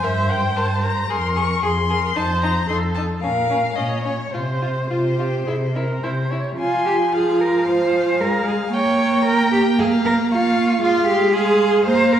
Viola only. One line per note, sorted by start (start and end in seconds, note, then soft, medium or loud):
0.00 1.09 C5 medium
1.09 1.66 A#4 medium
1.64 1.92 G#4 medium
1.90 2.15 A#4 medium
2.16 2.68 C5 medium
2.70 3.22 A4 medium
3.24 3.76 A#4 medium
3.77 4.32 C#5 medium
4.33 4.83 C5 medium
4.90 5.16 F4 medium
5.18 5.45 G4 medium
5.46 5.54 G#4 medium
5.74 6.04 A#4 medium
6.03 6.31 C5 medium
6.30 6.57 C#5 medium
6.57 8.22 F3 medium
8.20 8.72 G#3 medium
8.73 10.78 A#3 medium
10.82 11.88 G#3 medium
11.86 12.20 A#3 medium